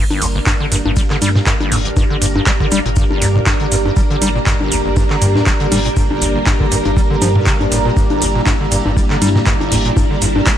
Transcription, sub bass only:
0.22 0.39 G1 medium
0.72 0.81 G1 medium
0.85 1.01 G1 medium
1.22 1.39 G2 loud
1.72 1.89 G1 medium
2.22 2.39 G1 loud
2.72 2.81 G1 medium
2.85 3.01 G1 medium
3.22 3.39 G2 medium
3.72 3.89 G1 loud
4.22 4.39 G1 medium
4.72 4.81 G1 medium
4.85 5.01 G1 medium
5.22 5.39 G2 medium
5.72 5.89 G1 medium
6.22 6.39 G1 loud
6.72 6.81 G1 loud
6.86 7.01 G1 medium
7.22 7.39 G2 loud
7.72 7.89 G1 medium
8.22 8.39 G1 loud
8.72 8.81 G1 medium
8.86 9.01 G1 medium
9.22 9.39 G2 loud
9.72 9.89 G1 medium
10.22 10.39 G1 loud

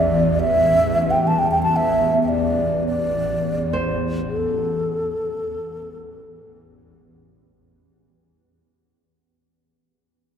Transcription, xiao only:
0.00 0.41 D5 medium
0.40 1.12 E5 medium
1.11 1.29 G5 medium
1.27 1.40 A5 medium
1.39 1.50 G5 medium
1.51 1.62 G5 medium
1.63 1.78 A5 medium
1.76 2.22 E5 medium
2.22 2.30 E5 medium
2.29 2.87 D5 medium
2.87 3.97 D5 medium
4.30 6.57 A4 medium

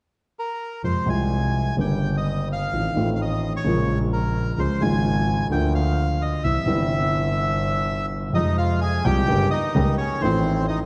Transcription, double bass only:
0.84 1.04 F2 soft
1.08 1.75 C2 medium
1.79 2.68 G1 medium
2.72 2.92 A1 soft
2.96 3.62 A1 medium
3.66 4.54 A#1 medium
4.58 4.78 C#2 soft
4.81 5.48 G#1 medium
5.52 6.40 D2 medium
6.44 6.64 C2 soft
6.67 8.26 G1 medium
8.34 9.01 F2 medium
9.05 9.25 C2 medium
9.29 9.48 G1 medium
9.76 9.95 C#2 medium
10.22 10.86 A1 medium

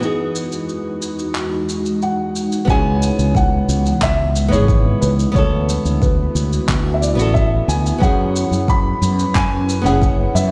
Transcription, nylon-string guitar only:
0.00 2.63 E3 medium
0.00 2.64 B3 medium
0.00 2.65 D#4 medium
0.00 2.65 F#4 medium
0.05 2.66 G#4 medium
2.65 4.47 B3 medium
2.65 4.48 C#4 medium
2.69 4.49 E4 medium
2.69 4.50 G#4 loud
4.48 5.29 B3 medium
4.48 5.30 D#4 medium
4.52 5.31 E4 medium
4.52 5.32 G#4 loud
5.32 7.13 B3 loud
5.32 7.15 E4 medium
5.36 7.16 F#4 medium
5.36 7.17 A4 loud
7.15 7.96 B3 medium
7.15 7.97 E4 medium
7.15 7.98 F#4 medium
7.22 7.99 A4 loud
7.98 9.80 B3 medium
7.98 9.81 C#4 medium
8.03 9.82 E4 medium
8.03 9.83 G#4 loud
9.82 10.51 B3 medium
9.82 10.51 C#4 medium
9.86 10.51 E4 medium
9.86 10.51 G#4 loud

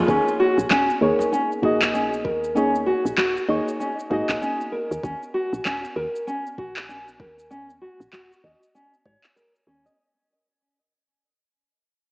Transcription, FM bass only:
0.09 0.20 D#2 loud
0.58 0.65 A#1 medium
0.70 0.91 D#1 loud
1.01 1.12 D#2 medium
1.63 2.27 A#1 medium
2.25 2.93 D#2 loud
3.05 3.13 A#1 medium
3.18 3.39 D#1 loud
3.49 3.60 D#2 medium
4.11 4.22 G#2 medium
4.29 4.36 A#1 loud
4.91 4.98 D#2 medium
5.04 5.14 D#2 medium
5.53 5.60 A#1 medium
5.65 5.86 D#1 loud
5.96 6.07 D#2 medium
6.58 7.21 A#1 medium
7.20 7.88 D#2 loud
8.00 8.07 A#1 medium
8.12 8.33 D#1 medium
8.44 8.55 D#2 medium
9.05 9.16 G#2 medium
9.67 9.88 D#2 medium

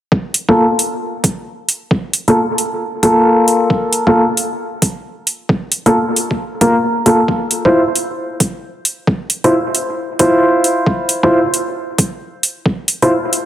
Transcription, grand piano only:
0.49 0.63 A#3 medium
0.49 0.63 F4 medium
0.49 0.63 A4 medium
2.28 2.35 A#3 medium
2.28 2.35 F4 medium
2.28 2.35 A4 medium
3.03 4.03 A#3 medium
3.03 4.03 F4 medium
3.03 4.03 A4 loud
4.07 4.21 A#3 medium
4.07 4.21 F4 medium
4.07 4.21 A4 medium
5.86 5.93 A#3 medium
5.86 5.93 F4 medium
5.86 5.93 A4 medium
6.61 6.74 A#3 medium
6.61 6.74 F4 medium
6.61 6.74 A#4 medium
7.06 7.19 A#3 medium
7.06 7.19 F4 medium
7.06 7.19 A4 medium
7.65 7.79 E4 medium
7.65 7.79 F4 medium
7.65 7.79 C5 medium
9.44 9.51 E4 medium
9.44 9.51 F4 medium
9.44 9.51 C5 medium
10.19 11.20 E4 medium
10.19 11.20 F4 medium
10.19 11.20 C5 loud
11.23 11.37 E4 medium
11.23 11.37 F4 medium
11.23 11.37 C5 medium
13.02 13.10 E4 medium
13.02 13.10 F4 medium
13.02 13.10 C5 medium

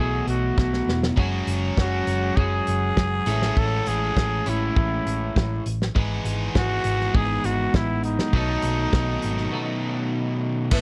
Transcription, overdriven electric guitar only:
0.00 1.16 B2 medium
0.00 1.15 F#3 medium
0.00 1.17 B3 medium
0.00 1.18 A4 medium
1.16 3.25 F#3 medium
1.16 3.26 C#4 medium
1.16 3.26 F#4 medium
1.20 3.29 G#4 medium
3.26 5.64 A2 medium
3.26 5.65 C#4 medium
3.26 5.65 E4 loud
3.26 5.66 A4 medium
5.95 8.32 G#3 medium
5.95 8.36 B3 medium
5.95 8.34 G#4 loud
8.33 10.70 B2 medium
8.33 10.71 D#3 medium
8.33 10.71 F#3 loud
8.33 10.71 B3 medium
8.33 10.72 D#4 loud
8.38 10.72 A4 loud
10.72 10.81 A2 medium

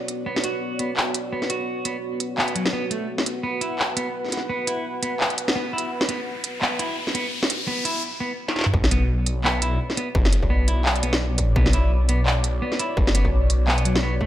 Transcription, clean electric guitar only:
0.26 0.42 B3 medium
0.44 0.78 F#4 medium
0.80 0.91 B3 medium
1.33 1.49 B3 medium
1.50 1.84 F#4 medium
1.85 1.96 B3 medium
2.38 2.54 B3 medium
2.55 2.67 F#3 medium
2.73 2.84 B3 loud
2.91 3.07 A3 medium
3.43 3.60 B3 medium
3.61 3.78 E4 medium
3.97 4.08 B3 medium
4.50 4.66 B3 medium
4.67 4.84 E4 medium
5.03 5.14 B3 medium
5.55 5.72 B3 medium
5.73 5.90 E4 medium
6.09 6.20 B3 medium
6.62 6.78 B3 medium
6.79 6.96 E4 medium
7.15 7.26 B3 medium
7.68 7.84 B3 medium
7.85 8.02 E4 medium
8.20 8.32 B3 medium
8.92 9.02 B3 medium
9.44 9.60 B3 medium
9.62 9.79 E4 medium
9.97 10.08 B3 medium
10.50 10.66 B3 medium
10.68 10.85 E4 medium
11.03 11.14 B3 medium
11.56 11.72 B3 medium
11.74 11.91 E4 medium
12.09 12.20 B3 medium
12.62 12.78 B3 medium
12.80 12.96 E4 medium
13.15 13.26 B3 medium
13.68 13.84 B3 medium
13.85 13.96 F#3 medium
14.03 14.14 B3 loud
14.21 14.27 A3 medium

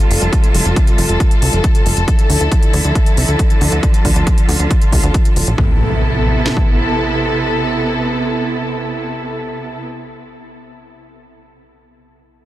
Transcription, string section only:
0.00 2.04 C3 medium
0.00 2.04 G3 medium
0.00 2.04 F4 medium
0.00 5.54 A4 medium
2.08 5.55 D3 medium
2.08 5.55 F3 medium
2.08 3.81 E4 medium
3.83 5.56 F4 medium
5.58 9.84 C3 medium
5.58 9.84 B3 medium
5.58 9.84 E4 medium
5.58 9.84 A4 medium

